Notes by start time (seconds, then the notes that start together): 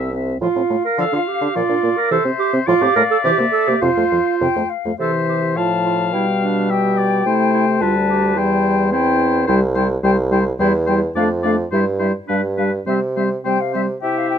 Already playing: C2 C4 E5
0.13 C4 E5
0.41 A2 F3 F4 F5
0.56 A2 C4
0.70 A2 A3
0.85 A#4
0.98 D3 F3 A4 F5
1.12 D3 D4 F4
1.28 G4
1.41 D3 D4
1.55 A#2 F3 F4 D5
1.69 A#2 D4
1.83 A#2 A#3
1.97 A#4
2.10 C3 E3 A4 C5 E5
2.25 C3 C4
2.39 G4
2.53 C3 C4
2.67 A2 F3 F4 D5 F5
2.81 A2 C4 G4
2.96 A2 A3 A#4
3.11 A4
3.23 C3 E3 G4 E5
3.38 C3 A#3
3.52 A4
3.67 C3 A#3 G4
3.81 F2 C3 F4 C5 F5
3.97 F2 A3
4.12 F2 F3
4.40 F2 C3 G5
4.56 F2 A3
4.69 F5
4.85 F2 A3
4.99 C3 E3 A4 C5 E5
5.28 G4
5.56 A2 F3 F4 F5 A5
5.84 F4
6.13 B2 G3 E4 G5
6.42 D4
6.69 G4 E5 G5
6.98 D5
7.25 C3 A3 E4 C5
7.53 E4
7.81 D2 G3 F4 B4 A5
8.08 G4
8.36 E2 G3 E4 C5 G5
8.92 C4 E4 C5 G5
9.47 C2 G3 E4 C5 G5
9.75 G3 E4 C5 G5
10.03 C2 G3 E4 C5 G5
10.31 G3 E4 C5 G5
10.59 E2 G3 E4 C5 G5
10.87 G3 E4 C5 G5
11.16 F2 A3 D4 D5 F5
11.43 A3 D4 D5 F5
11.72 G2 G3 E4 C5 E5
11.99 G3 E4 C5 E5
12.28 G2 G3 D4 B4 F5
12.57 G3 D4 B4 F5
12.86 C3 G3 C4 C5 E5
13.16 G3 C4 C5 E5
13.44 C3 G3 C4 C5 G5
13.60 F5
13.73 G3 C4 C5 E5
14.01 C3 E4 G4 E5 G5
14.18 F5
14.29 G5